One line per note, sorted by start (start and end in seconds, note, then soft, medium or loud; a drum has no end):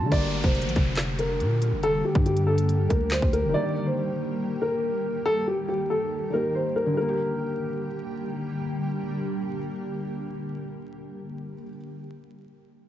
0.00 0.11 D3 loud
0.00 0.10 F#4 medium
0.06 3.48 D3 medium
0.06 3.50 G3 medium
0.12 0.43 G1 loud
0.12 3.51 D3 medium
0.12 6.93 G3 medium
0.12 6.93 A#3 medium
0.12 3.51 A#3 medium
0.12 6.93 G4 medium
0.12 0.42 D5 loud
0.12 kick loud
0.12 closed hi-hat medium
0.12 downlifter medium
0.17 3.53 G4 medium
0.44 0.67 F1 loud
0.44 1.15 C5 medium
0.44 kick loud
0.55 closed hi-hat soft
0.62 0.75 A#1 loud
0.62 closed hi-hat medium
0.69 closed hi-hat medium
0.76 1.42 F1 loud
0.76 kick loud
0.76 closed hi-hat medium
0.97 snare loud
0.97 clap medium
0.97 closed hi-hat medium
1.19 1.79 A#4 medium
1.19 closed hi-hat medium
1.40 1.74 A#2 loud
1.40 closed hi-hat medium
1.62 closed hi-hat medium
1.72 2.03 F1 loud
1.83 2.02 A4 loud
1.83 closed hi-hat medium
2.05 2.24 G4 medium
2.15 2.87 G2 loud
2.15 kick loud
2.26 2.45 G4 medium
2.26 closed hi-hat medium
2.37 closed hi-hat medium
2.47 2.87 A4 medium
2.58 closed hi-hat medium
2.69 closed hi-hat medium
2.89 3.21 D2 loud
2.89 3.09 A#4 medium
2.89 kick medium
2.89 closed hi-hat medium
3.11 3.30 C5 medium
3.11 snare loud
3.11 clap medium
3.22 3.45 D2 loud
3.22 kick loud
3.33 3.52 A#4 medium
3.33 closed hi-hat medium
3.44 3.54 F1 loud
3.49 6.26 D#3 medium
3.49 6.28 G3 medium
3.54 6.94 D#3 medium
3.54 6.30 A#3 medium
3.54 3.85 D5 loud
3.60 6.32 G4 medium
3.86 4.57 C5 medium
4.62 5.22 A#4 medium
5.26 5.45 A4 loud
5.48 5.66 G4 medium
5.69 5.88 G4 medium
5.90 6.30 A4 medium
6.30 6.96 D#3 medium
6.30 6.92 G3 soft
6.30 6.98 A#3 soft
6.30 6.52 A#4 medium
6.36 6.99 G4 medium
6.55 6.74 C5 medium
6.76 6.95 A#4 medium
6.86 11.54 D3 medium
6.94 11.16 D3 medium
6.94 11.62 G3 medium
6.94 11.16 G3 medium
6.94 11.16 A#3 medium
6.94 11.16 G4 medium
6.94 8.22 A#4 medium
7.01 11.69 A#3 medium
7.09 11.77 G4 medium